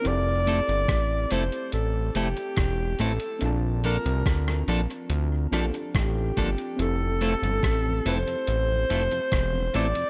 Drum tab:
HH |x-xxx-xxx-xxx-xx|x-xxx-xxx-xxx-xx|x-xxx-xxx-xxx-xx|
SD |----r-------r---|----rr----r-r---|----r-------r---|
BD |----o-------o---|----o-------o-o-|----o-------o---|